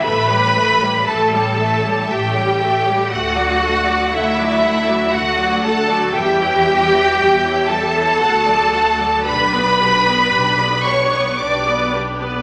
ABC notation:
X:1
M:3/4
L:1/16
Q:1/4=58
K:D
V:1 name="Violin section"
b4 a4 g4 | f4 e4 f2 a2 | g6 a6 | b6 c'2 d'2 z2 |]
V:2 name="Violin section"
e c e c e c e c e c e c | f d f d f d f d f d f d | e c e c e c e c f d f d | B d B d B d B d B d B d |]
V:3 name="Cello section"
B4 A4 G4 | F4 E4 F2 A2 | G6 A6 | B6 c2 d2 z2 |]
V:4 name="Viola section"
[A,A] [G,G] [A,A] [G,G] [A,A] [G,G] [A,A] [G,G] [A,A] [G,G] [A,A] [G,G] | [A,A] [F,F] [A,A] [F,F] [A,A] [F,F] [A,A] [F,F] [A,A] [F,F] [A,A] [F,F] | [G,G] [E,E] [G,G] [E,E] [G,G] [E,E] [G,G] [E,E] [A,F] [F,A] [A,F] [F,A] | [DG] [B,B] [DG] [B,B] [DG] [B,B] [DG] [B,B] [DG] [B,B] [DG] [B,B] |]
V:5 name="Double bass section" clef=bass
A,,,4 A,,,4 A,,,4 | D,,4 D,,4 D,,4 | E,,4 E,,4 D,,4 | B,,,4 B,,,4 B,,,4 |]